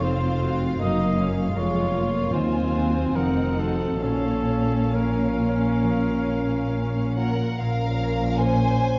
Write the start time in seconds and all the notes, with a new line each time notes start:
Already playing: F1 F2 C3 D#4 F4 F#4 C5 F5
0.04 C4 A4 C5
0.42 C4 F#4
0.80 F#1 F#2 A#3 D#4 D#5
1.18 C#4
1.55 F1 F2 G#3 F4 A#4 C#5
1.94 A#3 F4
2.33 D#2 D#3 C4 C5 G#5
2.74 F#4 C5
3.15 F1 F2 F3 D#4 A#4 F#5
3.59 F#4 A4 C5
4.01 A#1 A#2 C#4 A4 F5
4.49 C#4
4.95 A#4 C#5
5.40 F4
5.83 F3
6.28 C#4
6.72 C#5
7.17 F4 A#4 F#5
7.59 A#1 A#2 F3 C#4 A#4 F5
7.99 C#4
8.37 A#4 C5 G#5
8.77 C#4